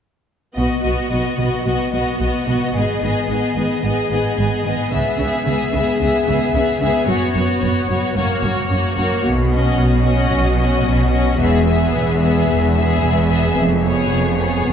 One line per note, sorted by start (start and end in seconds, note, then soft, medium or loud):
0.57 0.65 B1 soft
0.57 0.65 B2 soft
0.57 0.83 B3 soft
0.57 0.83 F#4 soft
0.57 0.83 D#5 soft
0.84 0.92 B1 soft
0.84 0.92 B2 soft
0.84 1.10 B3 soft
0.84 1.11 F#4 soft
0.84 1.11 D#5 soft
1.11 1.20 B1 soft
1.11 1.19 B2 soft
1.11 1.38 B3 soft
1.11 1.39 F#4 soft
1.11 1.38 D#5 soft
1.38 1.47 B1 soft
1.38 1.46 B2 soft
1.38 1.65 B3 soft
1.38 1.66 F#4 soft
1.38 1.66 D#5 soft
1.66 1.74 B1 soft
1.66 1.74 B2 soft
1.66 1.93 B3 soft
1.66 1.93 F#4 soft
1.66 1.93 D#5 soft
1.93 2.01 B1 soft
1.93 2.01 B2 soft
1.93 2.19 B3 soft
1.93 2.21 F#4 soft
1.93 2.19 D#5 soft
2.20 2.28 B1 soft
2.20 2.28 B2 soft
2.20 2.46 B3 soft
2.20 2.47 F#4 soft
2.20 2.47 D#5 soft
2.47 2.55 B1 soft
2.47 2.55 B2 soft
2.47 2.73 B3 soft
2.47 2.75 F#4 soft
2.47 2.75 D#5 soft
2.74 2.82 G#1 soft
2.74 2.83 G#2 soft
2.74 3.01 B3 soft
2.74 3.02 G#4 soft
2.74 3.01 D#5 soft
3.01 3.10 G#1 soft
3.01 3.09 G#2 soft
3.01 3.27 B3 soft
3.01 3.29 G#4 soft
3.01 3.29 D#5 soft
3.28 3.37 G#1 soft
3.28 3.37 G#2 soft
3.28 3.55 B3 soft
3.28 3.56 G#4 soft
3.28 3.57 D#5 soft
3.56 3.64 G#1 soft
3.56 3.65 G#2 soft
3.56 3.83 B3 soft
3.56 3.84 G#4 soft
3.56 3.83 D#5 soft
3.83 3.92 G#1 soft
3.83 3.91 G#2 soft
3.83 4.09 B3 soft
3.83 4.10 G#4 soft
3.83 4.11 D#5 soft
4.11 4.19 G#1 soft
4.11 4.19 G#2 soft
4.11 4.37 B3 soft
4.11 4.38 G#4 soft
4.11 4.38 D#5 soft
4.38 4.46 G#1 soft
4.38 4.46 G#2 soft
4.38 4.65 B3 soft
4.38 4.65 G#4 soft
4.38 4.66 D#5 soft
4.65 4.73 G#1 soft
4.65 4.73 G#2 soft
4.65 4.91 B3 soft
4.65 4.92 G#4 soft
4.65 4.92 D#5 soft
4.92 5.01 C#2 soft
4.92 5.00 C#3 soft
4.92 5.19 B3 soft
4.92 5.19 G#4 soft
4.92 5.19 E5 soft
5.19 5.28 C#2 soft
5.19 5.27 C#3 soft
5.19 5.46 B3 soft
5.19 5.46 G#4 soft
5.19 5.44 E5 soft
5.46 5.55 C#2 soft
5.46 5.54 C#3 soft
5.46 5.72 B3 soft
5.46 5.73 G#4 soft
5.46 5.72 E5 soft
5.73 5.82 C#2 soft
5.73 5.81 C#3 soft
5.73 6.00 B3 soft
5.73 6.00 G#4 soft
5.73 5.99 E5 soft
6.00 6.08 C#2 soft
6.00 6.08 C#3 soft
6.00 6.27 B3 soft
6.00 6.27 G#4 soft
6.00 6.26 E5 soft
6.27 6.35 C#2 soft
6.27 6.35 C#3 soft
6.27 6.54 B3 soft
6.27 6.54 G#4 soft
6.27 6.52 E5 soft
6.53 6.62 C#2 soft
6.53 6.62 C#3 soft
6.53 6.81 B3 soft
6.53 6.81 G#4 soft
6.53 6.79 E5 soft
6.80 6.89 C#2 soft
6.80 6.88 C#3 soft
6.80 7.08 B3 soft
6.80 7.08 G#4 soft
6.80 7.07 E5 soft
7.07 7.16 F#1 medium
7.07 7.15 F#2 medium
7.07 7.35 B3 soft
7.07 7.34 F#4 soft
7.07 7.34 C#5 soft
7.34 7.43 F#1 soft
7.34 7.42 F#2 soft
7.34 7.62 B3 soft
7.34 7.61 F#4 soft
7.34 7.61 C#5 soft
7.61 7.70 F#1 soft
7.61 7.69 F#2 soft
7.61 7.88 B3 soft
7.61 7.89 F#4 soft
7.61 7.88 C#5 soft
7.89 7.97 F#1 soft
7.89 7.97 F#2 soft
7.89 8.16 B3 soft
7.89 8.15 F#4 soft
7.89 8.15 C#5 soft
8.16 8.24 F#1 soft
8.16 8.24 F#2 soft
8.16 8.42 A#3 soft
8.16 8.43 F#4 soft
8.16 8.41 C#5 medium
8.42 8.52 F#1 soft
8.42 8.51 F#2 medium
8.42 8.69 A#3 soft
8.42 8.70 F#4 soft
8.42 8.69 C#5 soft
8.70 8.79 F#1 soft
8.70 8.78 F#2 soft
8.70 8.97 A#3 soft
8.70 8.96 F#4 medium
8.70 8.96 C#5 soft
8.97 9.06 F#1 medium
8.97 9.05 F#2 soft
8.97 9.24 A#3 soft
8.97 9.24 F#4 soft
8.97 9.24 C#5 soft
9.24 9.72 B1 medium
9.24 9.72 B2 medium
9.52 10.05 C#4 medium
9.52 10.04 F#4 soft
9.52 10.04 D#5 soft
9.78 10.26 B1 medium
9.78 10.26 B2 medium
10.05 10.58 C#4 medium
10.05 10.59 F#4 soft
10.05 10.57 D#5 soft
10.31 10.80 B1 medium
10.31 10.79 B2 medium
10.59 11.13 C#4 soft
10.59 11.13 F#4 soft
10.59 11.12 D#5 medium
10.85 11.34 B1 medium
10.85 11.33 B2 medium
11.13 11.40 C#4 soft
11.13 11.40 F#4 soft
11.13 11.39 D#5 soft
11.39 11.88 E1 medium
11.39 11.88 E2 medium
11.39 11.66 B3 soft
11.39 11.67 G#4 soft
11.39 11.66 E5 medium
11.67 12.20 B3 medium
11.67 12.21 G#4 soft
11.67 12.21 E5 soft
11.94 12.42 E1 medium
11.94 12.42 E2 medium
12.22 12.75 B3 soft
12.22 12.75 G#4 soft
12.22 12.74 E5 soft
12.48 12.96 E1 medium
12.48 12.96 E2 medium
12.75 13.28 B3 soft
12.75 13.28 G#4 soft
12.75 13.28 E5 soft
13.02 13.50 E1 medium
13.02 13.50 E2 medium
13.29 13.56 B3 medium
13.29 13.56 G#4 soft
13.29 13.56 E5 medium
13.56 14.04 F1 medium
13.56 14.04 F2 medium
13.84 14.37 B3 soft
13.84 14.37 G#4 soft
13.84 14.36 C#5 soft
14.10 14.58 F1 soft
14.10 14.58 F2 medium
14.38 14.73 B3 soft
14.38 14.73 G#4 soft
14.38 14.73 C#5 soft
14.65 14.73 F1 soft
14.65 14.73 F2 soft